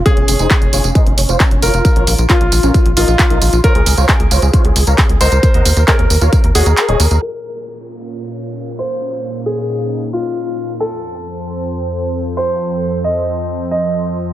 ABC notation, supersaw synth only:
X:1
M:4/4
L:1/16
Q:1/4=134
K:Bbm
V:1 name="Supersaw synth"
[DFAd] D D [EAce] z D [DFAd] D [EAce] D D [Fcdf] D D [FBdf] F | F [FBdf] F F [FBdf] F F [DFBd] z F [EFBe] F F [EFBe] F F | [Fcdf] A A [Fcdf] A A [Fcdf] A [Fcdf] A A [Bdfb] A A [Begb] B | B [Begb] B B [Adea] B B [FBdf] B B [Gdeg] B B [Adea] B B |
z16 | z16 | z16 | z16 |]